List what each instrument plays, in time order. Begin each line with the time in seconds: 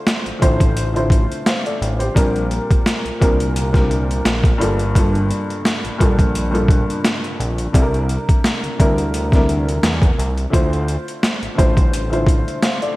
Already playing: upright piano D3 A3 E4 F4 C5
0.07 snare, closed hi-hat
0.26 analog synth bass A1, closed hi-hat
0.39 analog synth bass A1, upright piano D3 A3 E4 F4 C5, kick, closed hi-hat
0.60 kick, closed hi-hat
0.77 closed hi-hat
0.94 upright piano D3 A3 E4 F4 C5, closed hi-hat
1.10 kick, closed hi-hat
1.32 closed hi-hat
1.46 upright piano C5 F5, snare, closed hi-hat
1.66 upright piano A4 D5, closed hi-hat
1.81 analog synth bass A1, closed hi-hat
1.99 upright piano G4 C5, closed hi-hat
2.14 analog synth bass A#1, upright piano A#2 G3 C4 D4 A#4, kick, closed hi-hat
2.36 closed hi-hat
2.51 closed hi-hat
2.71 kick, closed hi-hat
2.86 snare, closed hi-hat
3.05 analog synth bass C2, closed hi-hat
3.20 analog synth bass C2, upright piano A#2 G3 C4 D4 A#4, kick, closed hi-hat
3.40 closed hi-hat
3.56 closed hi-hat
3.73 upright piano A#2 G3 C4 D4 A#4, kick, snare, closed hi-hat
3.91 closed hi-hat
4.11 closed hi-hat
4.25 analog synth bass A#1, snare, closed hi-hat
4.44 kick, closed hi-hat
4.58 analog synth bass G1, upright piano G2 G3 A#3 F4 A4, closed hi-hat
4.79 closed hi-hat
4.95 upright piano G2 G3 A#3 F4 A4, kick, closed hi-hat
5.15 closed hi-hat
5.30 closed hi-hat
5.50 closed hi-hat
5.65 snare, closed hi-hat
5.84 analog synth bass A#1, closed hi-hat
5.98 analog synth bass A#1, upright piano G2 G3 A#3 F4 A4, kick, closed hi-hat
6.19 kick, closed hi-hat
6.35 closed hi-hat
6.51 upright piano G2 G3 A#3 F4 A4, closed hi-hat
6.68 kick, closed hi-hat
6.90 closed hi-hat
7.04 snare, closed hi-hat
7.24 closed hi-hat
7.39 analog synth bass A#1, closed hi-hat
7.58 closed hi-hat
7.73 analog synth bass C2, upright piano C3 G3 D4 E4 A4, kick, closed hi-hat
7.82 upright piano A#4
7.94 closed hi-hat
8.09 closed hi-hat
8.29 kick, closed hi-hat
8.44 snare, closed hi-hat
8.63 analog synth bass D2, closed hi-hat
8.78 analog synth bass D2, upright piano C3 G3 D4 E4 A#4, kick, closed hi-hat
8.98 closed hi-hat
9.14 closed hi-hat
9.32 upright piano C3 G3 D4 E4 A#4, kick, snare, closed hi-hat
9.49 closed hi-hat
9.69 closed hi-hat
9.83 analog synth bass E2, snare, closed hi-hat
10.02 kick, closed hi-hat
10.18 analog synth bass C2, closed hi-hat
10.37 closed hi-hat
10.50 analog synth bass D2, upright piano D3 A3 E4 F4 C5, kick, closed hi-hat
10.73 closed hi-hat
10.88 closed hi-hat
11.08 closed hi-hat
11.23 snare, closed hi-hat
11.42 analog synth bass A1, closed hi-hat
11.55 analog synth bass A1, upright piano D3 A3 E4 F4 C5, kick
11.59 closed hi-hat
11.77 kick, closed hi-hat
11.93 closed hi-hat
12.10 upright piano D3 A3 E4 F4 C5, closed hi-hat
12.26 kick, closed hi-hat
12.48 closed hi-hat
12.62 upright piano C5 F5, snare, closed hi-hat
12.82 upright piano A4 D5, closed hi-hat